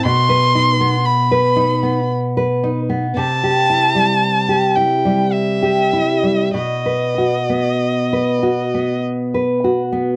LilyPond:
<<
  \new Staff \with { instrumentName = "Violin" } { \time 3/4 \key b \phrygian \tempo 4 = 55 c'''4 b''4 r4 | a''4. g''8 e''4 | dis''2 r4 | }
  \new Staff \with { instrumentName = "Nylon-string guitar" } { \time 3/4 \key b \phrygian b,16 b'16 dis'16 b8 b'16 dis'16 b8 b'16 dis'16 b16 | c16 g'16 e'16 g8 g'16 e'16 g8 g'16 e'16 g16 | b,16 b'16 fis'16 b8 b'16 fis'16 b8 b'16 fis'16 b16 | }
>>